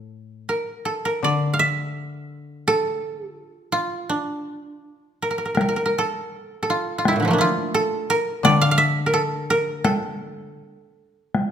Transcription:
0.00 0.48 A2 soft
0.00 0.55 A4 soft
0.49 0.91 A#4 soft
0.85 1.11 A4 medium
1.05 2.74 A#4 medium
1.23 3.36 D3 soft
1.23 2.84 D5 medium
1.54 1.65 F5 medium
1.59 3.09 E5 medium
2.68 3.36 A4 medium
3.36 3.72 F4 medium
3.72 5.91 F4 medium
4.09 6.52 D4 medium
5.22 5.30 A#4 soft
5.31 5.38 A#4 soft
5.38 5.45 A#4 soft
5.45 5.54 A#4 soft
5.55 5.60 A#4 soft
5.55 taiko rim medium
5.55 taiko high medium
5.61 5.68 A#4 soft
5.69 5.76 A#4 soft
5.76 5.85 A#4 soft
5.86 6.04 A#4 medium
5.98 6.62 A4 medium
6.63 7.22 A4 soft
6.70 6.98 F4 medium
6.98 7.14 F4 medium
7.05 7.38 E4 medium
7.05 taiko rim medium
7.05 taiko high medium
7.13 7.37 A2 soft
7.13 7.34 A#2 soft
7.20 7.44 D3 soft
7.20 7.37 E3 soft
7.25 7.44 F3 soft
7.25 8.16 A3 soft
7.31 7.80 A#3 soft
7.31 9.76 D4 soft
7.38 8.67 E4 soft
7.38 8.84 F4 medium
7.74 8.16 A4 medium
8.10 9.06 A#4 medium
8.43 10.57 D3 soft
8.43 10.05 D5 loud
8.43 taiko rim medium
8.43 taiko high medium
8.61 8.71 F5 medium
8.71 8.84 F5 medium
8.78 10.27 E5 medium
9.06 9.20 A#4 medium
9.14 9.56 A4 medium
9.50 9.90 A#4 medium
9.84 11.52 A4 medium
9.84 taiko rim medium
9.84 taiko high medium
11.35 taiko rim soft
11.35 taiko high medium

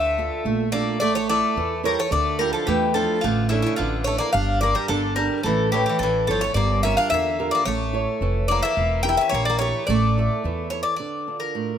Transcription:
0.00 0.29 D2 medium
0.00 0.45 D3 medium
0.00 0.68 A3 medium
0.00 0.72 E5 medium
0.18 0.62 D4 medium
0.18 0.63 F4 soft
0.18 0.63 A4 medium
0.45 1.01 A#1 medium
0.45 1.00 A3 medium
0.72 0.99 A#3 medium
0.72 0.96 D4 soft
0.72 0.96 F4 soft
0.72 0.96 A4 medium
0.72 0.99 D5 medium
1.00 1.40 A1 medium
1.00 1.14 A3 medium
1.00 1.55 A3 medium
1.00 1.14 D5 medium
1.15 1.29 A3 medium
1.15 1.28 C#5 medium
1.29 1.81 A3 medium
1.29 1.74 E4 soft
1.29 1.74 A4 soft
1.29 1.81 D5 medium
1.29 1.74 E5 medium
1.56 1.95 E2 medium
1.56 2.11 E3 medium
1.83 1.98 G3 medium
1.83 2.06 E4 soft
1.83 2.06 A4 soft
1.83 1.99 A#4 medium
1.83 2.06 C#5 soft
1.99 2.12 A3 medium
1.99 2.12 C#5 medium
2.11 2.51 D2 medium
2.11 2.65 D3 medium
2.11 2.38 A3 medium
2.11 2.38 D5 medium
2.39 2.53 G3 medium
2.39 2.84 D4 soft
2.39 2.84 E4 soft
2.39 2.85 F4 medium
2.39 2.52 A#4 medium
2.53 2.67 F3 medium
2.53 2.66 A4 medium
2.67 3.06 E2 medium
2.67 2.94 E3 medium
2.67 3.21 A3 medium
2.67 2.96 G4 medium
2.94 3.21 F3 medium
2.94 3.17 D4 soft
2.94 3.18 E4 soft
2.94 3.18 F4 soft
2.94 3.23 A4 medium
3.21 3.63 A1 medium
3.21 3.49 D3 medium
3.21 3.77 A3 medium
3.21 3.48 F4 medium
3.49 3.64 C#3 medium
3.49 3.95 D4 soft
3.49 3.61 E4 medium
3.49 3.95 E4 soft
3.49 3.96 A4 soft
3.62 3.76 E4 medium
3.66 3.77 C#3 medium
3.76 4.18 A1 medium
3.76 4.04 D3 medium
3.76 4.33 E3 medium
3.76 4.03 F4 medium
4.04 4.20 A3 medium
4.04 4.29 D4 soft
4.04 4.29 E4 soft
4.04 4.29 A4 soft
4.04 4.18 C#5 medium
4.18 4.33 A#3 medium
4.18 4.32 D5 medium
4.33 4.73 G1 loud
4.33 4.88 G3 medium
4.33 4.60 D4 medium
4.33 4.59 F5 medium
4.61 4.75 A#3 medium
4.61 5.06 D4 soft
4.61 5.06 G4 soft
4.61 5.06 A#4 medium
4.61 4.74 D5 medium
4.75 4.88 G3 medium
4.75 4.88 A#4 medium
4.88 5.28 G1 medium
4.88 5.15 D3 medium
4.88 5.44 D3 medium
4.88 5.15 A4 medium
5.16 5.42 G3 medium
5.16 5.39 D4 soft
5.16 5.39 G4 soft
5.16 5.42 A#4 medium
5.16 5.40 A#4 medium
5.43 5.83 A1 medium
5.43 5.71 E3 medium
5.43 5.99 A3 medium
5.43 5.71 A4 medium
5.72 5.86 E3 medium
5.72 6.17 E4 soft
5.72 5.85 G4 medium
5.72 6.17 A4 soft
5.72 6.18 C#5 soft
5.86 6.01 E3 medium
5.86 5.99 G4 medium
5.99 6.25 A1 medium
5.99 6.55 E3 medium
5.99 6.28 E3 medium
5.99 6.25 A4 medium
6.27 6.53 G1 medium
6.27 6.42 F3 medium
6.27 6.51 E4 soft
6.27 6.41 A4 medium
6.27 6.51 A4 soft
6.27 6.51 C#5 soft
6.41 6.56 A3 medium
6.41 6.54 C#5 medium
6.54 6.94 G1 medium
6.54 7.10 G3 medium
6.54 6.82 A#3 medium
6.54 6.83 D5 medium
6.83 6.97 C#4 medium
6.83 7.28 F4 soft
6.83 7.28 G4 soft
6.83 7.28 A#4 soft
6.83 6.96 E5 medium
6.97 7.11 D4 medium
6.97 7.09 F5 medium
7.10 7.50 E2 medium
7.10 7.65 D3 medium
7.10 7.51 E5 medium
7.14 7.51 A#3 medium
7.39 7.61 F4 soft
7.39 7.61 G4 soft
7.39 7.62 A#4 medium
7.51 7.67 A#3 medium
7.51 7.65 D5 medium
7.65 8.05 A1 medium
7.65 8.20 A3 medium
7.65 8.46 A3 medium
7.65 8.45 C#5 medium
7.93 8.38 E4 soft
7.93 8.38 A4 soft
7.93 8.39 C#5 medium
8.21 8.60 F1 medium
8.21 8.75 E3 medium
8.48 8.64 A#3 medium
8.48 8.72 E4 soft
8.48 8.72 A4 soft
8.48 8.72 C#5 soft
8.48 8.62 D5 medium
8.63 9.03 A#3 medium
8.63 9.02 E5 medium
8.77 9.16 E1 medium
8.77 9.31 E3 medium
9.03 9.49 E4 soft
9.03 9.49 G4 soft
9.03 9.49 A#4 medium
9.03 9.17 G5 loud
9.09 9.20 E4 medium
9.17 9.33 C#4 medium
9.17 9.32 E5 medium
9.29 9.71 A#1 medium
9.29 9.86 E3 medium
9.29 9.44 C#5 medium
9.34 9.47 A#3 medium
9.45 9.58 D5 medium
9.50 9.61 A#3 medium
9.59 9.87 A3 medium
9.59 9.83 E4 soft
9.59 9.83 G4 soft
9.59 9.83 A#4 soft
9.59 9.85 C#5 medium
9.87 10.27 A1 loud
9.87 10.42 A3 medium
9.87 10.68 A3 medium
9.87 10.67 D5 medium
10.18 10.61 E4 soft
10.18 10.62 A4 soft
10.18 10.62 E5 medium
10.44 10.83 E2 medium
10.44 10.98 E3 medium
10.70 10.94 E4 soft
10.70 10.94 A4 soft
10.70 10.82 C#5 medium
10.70 10.95 C#5 soft
10.83 10.95 D5 medium
10.96 11.53 D3 soft
10.96 11.36 D5 medium
11.28 11.72 D4 soft
11.28 11.72 F4 soft
11.40 11.78 A#4 medium
11.55 11.78 A2 soft

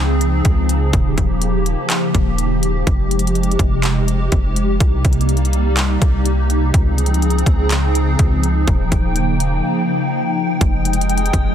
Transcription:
0.00 0.42 C#2 loud
0.00 2.83 C#3 medium
0.00 4.76 F3 medium
0.00 0.91 C4 medium
0.00 4.76 D#4 medium
0.00 0.91 G#4 medium
0.21 closed hi-hat medium
0.45 0.91 C#2 loud
0.45 kick medium
0.45 closed hi-hat medium
0.69 closed hi-hat medium
0.93 1.17 D#1 loud
0.93 2.85 A#3 medium
0.93 6.70 G4 medium
0.93 kick loud
0.93 closed hi-hat medium
1.18 1.76 D#1 loud
1.18 kick medium
1.18 closed hi-hat medium
1.42 closed hi-hat medium
1.66 closed hi-hat medium
1.90 clap loud
1.90 closed hi-hat medium
2.15 2.84 D#1 loud
2.15 kick medium
2.15 closed hi-hat medium
2.38 closed hi-hat medium
2.63 closed hi-hat medium
2.87 3.57 F1 loud
2.87 6.70 C3 medium
2.87 4.78 G#3 medium
2.87 kick loud
2.87 closed hi-hat medium
3.11 closed hi-hat medium
3.19 closed hi-hat medium
3.27 closed hi-hat medium
3.35 closed hi-hat soft
3.43 closed hi-hat soft
3.51 closed hi-hat soft
3.59 4.29 F1 loud
3.59 kick medium
3.59 closed hi-hat medium
3.83 clap loud
3.83 closed hi-hat medium
4.08 closed hi-hat medium
4.32 4.79 F1 loud
4.32 kick medium
4.32 closed hi-hat medium
4.56 closed hi-hat medium
4.80 5.04 C2 loud
4.80 6.72 G3 medium
4.80 6.72 A#3 medium
4.80 11.55 D#4 medium
4.80 kick loud
4.80 closed hi-hat medium
5.05 5.98 C2 loud
5.05 kick medium
5.05 closed hi-hat medium
5.13 closed hi-hat medium
5.21 closed hi-hat medium
5.29 closed hi-hat soft
5.37 closed hi-hat soft
5.45 closed hi-hat soft
5.53 closed hi-hat medium
5.77 clap loud
5.77 closed hi-hat medium
6.02 6.71 C2 loud
6.02 kick medium
6.02 closed hi-hat medium
6.26 closed hi-hat medium
6.50 closed hi-hat medium
6.74 7.44 C#2 loud
6.74 8.66 C#3 medium
6.74 11.55 F3 medium
6.74 8.66 C4 medium
6.74 8.66 G#4 medium
6.74 kick loud
6.74 closed hi-hat medium
6.98 closed hi-hat medium
7.06 closed hi-hat medium
7.14 closed hi-hat medium
7.22 closed hi-hat soft
7.30 closed hi-hat soft
7.38 closed hi-hat soft
7.46 8.16 C#2 loud
7.46 kick medium
7.46 closed hi-hat medium
7.71 clap loud
7.71 closed hi-hat medium
7.95 closed hi-hat medium
8.19 8.66 C#2 loud
8.19 kick medium
8.19 closed hi-hat medium
8.43 closed hi-hat medium
8.67 8.91 D#1 loud
8.67 10.59 C#3 medium
8.67 10.59 A#3 medium
8.67 11.55 G5 medium
8.67 kick loud
8.67 closed hi-hat medium
8.92 9.61 D#1 loud
8.92 kick medium
8.92 closed hi-hat medium
9.16 closed hi-hat medium
9.40 closed hi-hat medium
10.61 11.31 F1 loud
10.61 11.55 C3 medium
10.61 11.55 G#3 medium
10.61 11.55 D#4 medium
10.61 11.55 G#4 medium
10.61 11.55 G5 medium
10.61 kick loud
10.61 closed hi-hat medium
10.85 closed hi-hat medium
10.93 closed hi-hat medium
11.01 closed hi-hat medium
11.09 closed hi-hat soft
11.18 closed hi-hat soft
11.26 closed hi-hat soft
11.33 11.55 F1 loud
11.33 kick medium
11.33 closed hi-hat medium

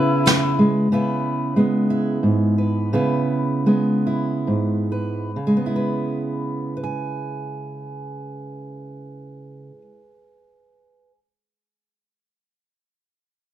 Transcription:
0.00 0.91 C#3 medium
0.00 0.91 B3 medium
0.00 0.23 E4 medium
0.00 0.25 E4 medium
0.00 0.55 E4 medium
0.00 0.22 G#4 medium
0.00 0.87 B4 medium
0.00 0.22 C#5 medium
0.25 0.87 E4 medium
0.25 snare medium
0.25 closed hi-hat medium
0.59 0.87 G#3 medium
0.92 2.23 C#3 medium
0.92 1.56 B3 medium
0.92 1.90 E4 medium
0.92 2.58 B4 medium
1.56 3.66 G#3 medium
1.56 2.93 B3 soft
1.90 2.94 E4 medium
2.23 2.92 G#2 medium
2.58 2.94 B4 soft
2.93 4.47 C#3 medium
2.93 3.66 B3 medium
2.93 4.05 E4 medium
2.93 4.91 B4 medium
3.66 5.30 G#3 medium
3.66 5.56 B3 soft
4.07 5.30 E4 soft
4.47 5.36 G#2 soft
4.92 5.31 B4 soft
5.36 9.71 C#3 soft
5.47 9.81 G#3 soft
5.57 6.76 B3 soft
5.66 10.01 E4 soft
5.76 6.77 B4 soft
6.77 11.11 B4 soft
6.84 11.18 G#5 medium

